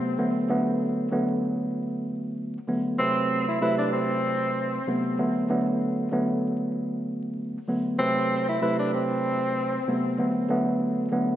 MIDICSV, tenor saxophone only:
0, 0, Header, 1, 2, 480
1, 0, Start_track
1, 0, Tempo, 625000
1, 381, Time_signature, 4, 2, 24, 8
1, 8725, End_track
2, 0, Start_track
2, 0, Title_t, "Tenor saxophone"
2, 0, Program_c, 0, 66
2, 2294, Note_on_c, 0, 60, 104
2, 2646, Note_off_c, 0, 60, 0
2, 2673, Note_on_c, 0, 64, 74
2, 2770, Note_off_c, 0, 64, 0
2, 2778, Note_on_c, 0, 64, 82
2, 2898, Note_off_c, 0, 64, 0
2, 2904, Note_on_c, 0, 62, 70
2, 3005, Note_off_c, 0, 62, 0
2, 3016, Note_on_c, 0, 60, 76
2, 3839, Note_off_c, 0, 60, 0
2, 6134, Note_on_c, 0, 60, 104
2, 6486, Note_off_c, 0, 60, 0
2, 6518, Note_on_c, 0, 64, 76
2, 6613, Note_off_c, 0, 64, 0
2, 6619, Note_on_c, 0, 64, 82
2, 6739, Note_off_c, 0, 64, 0
2, 6752, Note_on_c, 0, 62, 73
2, 6850, Note_off_c, 0, 62, 0
2, 6867, Note_on_c, 0, 60, 77
2, 7685, Note_off_c, 0, 60, 0
2, 8725, End_track
0, 0, End_of_file